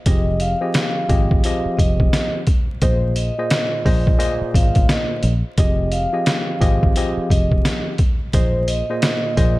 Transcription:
0.06 F1 F3 C4 G4 G#4 D#5, kick, closed hi-hat
0.40 F5, closed hi-hat
0.61 F3 C4 G4 G#4 D#5
0.74 snare, closed hi-hat
1.08 G#1 F3 C4 G4 G#4 D#5, kick, closed hi-hat
1.31 kick
1.44 F3 C4 G4 G#4 D#5, closed hi-hat
1.66 muted fingered electric bass stroke
1.77 F1 D#5, kick, closed hi-hat
2.00 kick
2.13 snare, closed hi-hat
2.47 kick, closed hi-hat
2.82 A#1 A#2 A#3 G#4 C5 D#5, kick, closed hi-hat
3.15 D#5, closed hi-hat
3.38 A#2 A#3 G#4 C5 D#5
3.50 snare, closed hi-hat
3.85 A#1 A#2 A#3 G#4 C5 D#5, kick, open hi-hat
4.07 kick
4.18 A#2 A#3 G#4 C5 D#5, closed hi-hat
4.41 muted fingered electric bass stroke
4.55 G#1 F5, kick, closed hi-hat
4.75 kick, closed hi-hat
4.89 D#5, snare, closed hi-hat
5.23 A#1, closed hi-hat
5.58 F1 F3 C4 G4 G#4 D#5, kick, closed hi-hat
5.92 F5, closed hi-hat
6.13 F3 C4 G4 G#4 D#5
6.26 snare, closed hi-hat
6.60 G#1 F3 C4 G4 G#4 D#5, kick, closed hi-hat
6.83 kick
6.96 F3 C4 G4 G#4 D#5, closed hi-hat
7.17 muted fingered electric bass stroke
7.30 F1 D#5, kick, closed hi-hat
7.52 kick
7.65 snare, closed hi-hat
7.98 kick, closed hi-hat
8.33 A#1 A#2 A#3 G#4 C5 D#5, kick, closed hi-hat
8.68 D#5, closed hi-hat
8.90 A#2 A#3 G#4 C5 D#5
9.02 snare, closed hi-hat
9.36 A#1 A#2 A#3 G#4 C5 D#5, kick, closed hi-hat

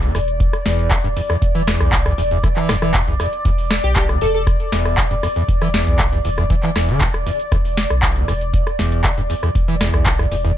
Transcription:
Already playing: B1 D5
0.03 E2, closed hi-hat, shaker
0.15 E1 E2, cross-stick, open hi-hat, shaker
0.28 closed hi-hat, shaker
0.40 kick, closed hi-hat, shaker
0.53 cross-stick, closed hi-hat, shaker
0.65 E1 E2, snare, open hi-hat, shaker
0.79 closed hi-hat, shaker
0.91 E1, kick, cross-stick, clap, closed hi-hat, shaker
1.04 E1 G2, closed hi-hat, shaker
1.16 E2, open hi-hat, shaker
1.30 E2, cross-stick, closed hi-hat, shaker
1.42 E1, kick, closed hi-hat, shaker
1.55 E3, open hi-hat, shaker
1.67 E2, cross-stick, snare, open hi-hat, shaker
1.80 B1, cross-stick, closed hi-hat, shaker
1.92 E1, kick, clap, closed hi-hat, shaker
2.06 E2, cross-stick, closed hi-hat, shaker
2.18 E1 E2, open hi-hat, shaker
2.31 E2, closed hi-hat, shaker
2.44 E3, kick, cross-stick, closed hi-hat, shaker
2.56 E3, clap, closed hi-hat, shaker
2.69 E1 E2, cross-stick, snare, open hi-hat, shaker
2.82 E3, cross-stick, closed hi-hat, shaker
2.94 E2, kick, clap, closed hi-hat, shaker
3.07 B1 E2, closed hi-hat, shaker
3.20 E2, cross-stick, open hi-hat, shaker
3.33 closed hi-hat, shaker
3.45 E1 E2, kick, closed hi-hat, shaker
3.58 open hi-hat, shaker
3.71 cross-stick, snare, open hi-hat, shaker
3.84 B1 G4, closed hi-hat, shaker
3.96 E1 G4, kick, clap, closed hi-hat, shaker
4.09 E2, cross-stick, closed hi-hat, shaker
4.21 E1 E2 A4, open hi-hat, shaker
4.34 A4, closed hi-hat, shaker
4.47 kick, cross-stick, closed hi-hat, shaker
4.60 closed hi-hat, shaker
4.72 E1 E2, snare, open hi-hat, shaker
4.85 cross-stick, closed hi-hat, shaker
4.98 E1, kick, clap, closed hi-hat, shaker
5.11 E1 G2, closed hi-hat, shaker
5.23 E2, cross-stick, open hi-hat, shaker
5.36 E2, closed hi-hat, shaker
5.48 E1, kick, closed hi-hat, shaker
5.62 E3, cross-stick, open hi-hat, shaker
5.74 E2, snare, open hi-hat, shaker
5.87 B1, closed hi-hat, shaker
5.99 E1, kick, cross-stick, clap, closed hi-hat, shaker
6.12 E2, closed hi-hat, shaker
6.25 E1 E2, open hi-hat, shaker
6.38 E2, cross-stick, closed hi-hat, shaker
6.50 E3, kick, closed hi-hat, shaker
6.63 E3, clap, closed hi-hat, shaker
6.76 E1 E2, cross-stick, snare, open hi-hat, shaker
6.89 D3, closed hi-hat, shaker
7.01 E1, kick, clap, closed hi-hat, shaker
7.14 E1, cross-stick, closed hi-hat, shaker
7.26 E2, open hi-hat, shaker
7.40 closed hi-hat, shaker
7.52 E1 E2, kick, cross-stick, closed hi-hat, shaker
7.65 open hi-hat, shaker
7.77 snare, open hi-hat, shaker
7.90 B1, cross-stick, closed hi-hat, shaker
8.03 E1, kick, clap, closed hi-hat, shaker
8.16 E2, closed hi-hat, shaker
8.28 E1 E2, cross-stick, open hi-hat, shaker
8.41 closed hi-hat, shaker
8.54 kick, closed hi-hat, shaker
8.67 cross-stick, closed hi-hat, shaker
8.79 E1 E2, snare, open hi-hat, shaker
8.92 closed hi-hat, shaker
9.04 E1, kick, cross-stick, clap, closed hi-hat, shaker
9.17 E1 G2, closed hi-hat, shaker
9.30 E2, open hi-hat, shaker
9.43 E2, cross-stick, closed hi-hat, shaker
9.55 E1, kick, closed hi-hat, shaker
9.68 E3, open hi-hat, shaker
9.81 E2, cross-stick, snare, open hi-hat, shaker
9.94 B1, cross-stick, closed hi-hat, shaker
10.06 E1, kick, clap, closed hi-hat, shaker
10.19 E2, cross-stick, closed hi-hat, shaker
10.31 E1 E2, open hi-hat, shaker
10.45 E2, closed hi-hat, shaker

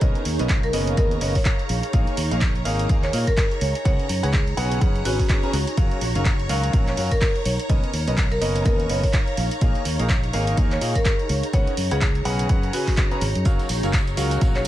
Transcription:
Already playing: D#4 G#4 C#5 F5 A#5
0.01 B1 B2 C#4 A#4 B4 D#5, kick, closed hi-hat
0.15 closed hi-hat
0.25 D#2, open hi-hat
0.39 B1 B2 C#4 A#4 B4 D#5, closed hi-hat
0.49 kick, clap, closed hi-hat
0.63 A#4, closed hi-hat
0.73 F#1 B2 C#4 A#4 B4 D#5, open hi-hat
0.87 closed hi-hat
0.97 D#2 B2 C#4 A#4 B4 D#5, kick, closed hi-hat
1.11 closed hi-hat
1.21 F#1 B2 C#4 A#4 B4 C#5 D#5, open hi-hat
1.35 C#5, kick, open hi-hat
1.45 kick, clap, closed hi-hat
1.59 closed hi-hat
1.69 A#1, open hi-hat
1.83 closed hi-hat
1.93 A#1 A#3 D#4 G#4 A#4 F5, kick, closed hi-hat
2.07 closed hi-hat
2.17 D#2, open hi-hat
2.31 A#1 A#3 D#4 G#4 A#4 F5, closed hi-hat
2.41 kick, clap, closed hi-hat
2.55 closed hi-hat
2.65 G#1 A#3 D#4 G#4 A#4 F5, open hi-hat
2.79 closed hi-hat
2.89 D#2 A#3 D#4 G#4 A#4 F5, kick, closed hi-hat
3.03 C#5, clap, closed hi-hat
3.13 A#2 A#3 D#4 G#4 A#4 F5, open hi-hat
3.27 A#4, kick, closed hi-hat
3.37 kick, clap, closed hi-hat
3.51 closed hi-hat
3.61 C#2 C#5, open hi-hat
3.75 closed hi-hat
3.85 C#2 C#3 C#4 G#4 B4 C#5 F#5, kick, closed hi-hat
3.99 closed hi-hat
4.09 F#2, open hi-hat
4.23 C#2 C#3 C#4 G#4 B4 F#5, closed hi-hat
4.33 kick, clap, closed hi-hat
4.47 closed hi-hat
4.57 B1 C#3 C#4 G#4 B4 F#5, open hi-hat
4.72 closed hi-hat
4.81 C#3 C#4 G#4 B4 F#5, kick, closed hi-hat
4.96 closed hi-hat
5.05 G#1 C#3 C#4 F#4 G#4 B4 G#5, open hi-hat
5.19 kick, open hi-hat
5.29 kick, clap, closed hi-hat
5.43 C#3 C#4 G#4 B4 A#5, closed hi-hat
5.53 C#2, open hi-hat
5.67 closed hi-hat
5.77 F#1 F#3 C#4 D#4 F#4 A#4 F5, kick, closed hi-hat
5.91 closed hi-hat
6.01 A#1, open hi-hat
6.15 F#1 F#3 C#4 F#4 A#4 F5, closed hi-hat
6.20 G#4
6.25 C#5, kick, clap, closed hi-hat
6.39 closed hi-hat
6.49 C#2 F#3 C#4 F#4 A#4 F5, open hi-hat
6.54 F5
6.63 closed hi-hat
6.73 A#1 F#3 C#4 F#4 A#4 F5, kick, closed hi-hat
6.87 C#5, clap, closed hi-hat
6.97 F#2 F#3 C#4 F#4 A#4 F5, open hi-hat
7.11 A#4, kick, closed hi-hat
7.21 A#4, kick, clap, closed hi-hat
7.36 closed hi-hat
7.45 B1 C#5, open hi-hat
7.59 closed hi-hat
7.69 B1 B2 C#4 A#4 B4 D#5, kick, closed hi-hat
7.84 closed hi-hat
7.93 D#2, open hi-hat
8.07 B1 B2 C#4 A#4 B4 D#5, closed hi-hat
8.17 kick, clap, closed hi-hat
8.32 A#4, closed hi-hat
8.41 F#1 B2 C#4 A#4 B4 D#5, open hi-hat
8.56 closed hi-hat
8.65 D#2 B2 C#4 A#4 B4 D#5, kick, closed hi-hat
8.80 closed hi-hat
8.89 F#1 B2 C#4 A#4 B4 C#5 D#5, open hi-hat
9.04 C#5, kick, open hi-hat
9.13 kick, clap, closed hi-hat
9.28 closed hi-hat
9.37 A#1, open hi-hat
9.51 closed hi-hat
9.61 A#1 A#3 D#4 G#4 A#4 F5, kick, closed hi-hat
9.75 closed hi-hat
9.85 D#2, open hi-hat
9.99 A#1 A#3 D#4 G#4 A#4 F5, closed hi-hat
10.09 kick, clap, closed hi-hat
10.23 closed hi-hat
10.33 G#1 A#3 D#4 G#4 A#4 F5, open hi-hat
10.47 closed hi-hat
10.57 D#2 D#4 G#4 A#4 F5, kick, closed hi-hat
10.71 C#5, clap, closed hi-hat
10.81 A#2 A#3 D#4 G#4 A#4 F5, open hi-hat
10.95 A#4, kick, closed hi-hat
11.05 A#4, kick, clap, closed hi-hat
11.19 closed hi-hat
11.29 C#2 C#5, open hi-hat
11.43 closed hi-hat
11.53 C#2 C#3 C#4 G#4 B4 C#5 F#5, kick, closed hi-hat
11.67 closed hi-hat
11.77 F#2, open hi-hat
11.91 C#2 C#3 C#4 G#4 B4 F#5, closed hi-hat
12.01 kick, clap, closed hi-hat
12.15 closed hi-hat
12.25 B1 C#3 C#4 G#4 B4 F#5, open hi-hat
12.39 closed hi-hat
12.49 F#2 C#3 C#4 G#4 B4 F#5, kick, closed hi-hat
12.63 closed hi-hat
12.73 C#3 C#4 F#4 G#4 B4 G#5, open hi-hat
12.87 kick, clap, open hi-hat
12.97 kick, clap, closed hi-hat
13.11 C#3 C#4 G#4 B4 A#5, closed hi-hat
13.21 G#1, open hi-hat
13.35 F#2, closed hi-hat
13.45 F#1 F#3 C#4 F#4 A#4 C#5 F5 A#5, kick, closed hi-hat, tambourine
13.59 closed hi-hat, tambourine
13.69 A#1, open hi-hat, tambourine
13.83 F#1 F#3 C#4 F#4 A#4 F5, closed hi-hat, tambourine
13.89 F5
13.93 kick, clap, closed hi-hat, tambourine
14.07 closed hi-hat, tambourine
14.17 C#2 F#3 C#4 F#4 A#4 F5, open hi-hat, tambourine
14.31 closed hi-hat, tambourine
14.41 F#3 C#4 F#4 A#4 F5, kick, closed hi-hat, tambourine
14.55 C#5, clap, closed hi-hat, tambourine

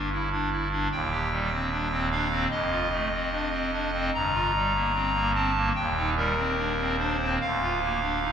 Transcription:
Already playing: G1 G2
0.12 E4
0.31 D4
0.51 E4
0.71 D4
0.91 D#1 D#2 G5
1.12 G4
1.32 G3
1.52 C4
1.71 D4
1.91 C4
2.11 D4 F5
2.31 C4
2.50 F1 F2 D#5
2.70 F4
2.91 A3
3.12 C4
3.32 D4
3.52 C4
3.72 D4
3.93 C4
4.13 G1 G2 A#5
4.34 F4
4.55 G3
4.74 A#3
4.94 C4
5.14 A#3
5.34 C4 A5
5.55 A#3
5.76 D#1 D#2 G5
5.97 D#4
6.16 G3 A#4
6.37 C4
6.56 D4
6.77 C4
6.98 D4 C5
7.21 C4
7.41 D1 D2 F5
7.62 F4
7.81 A#3
8.01 D4
8.21 D#4

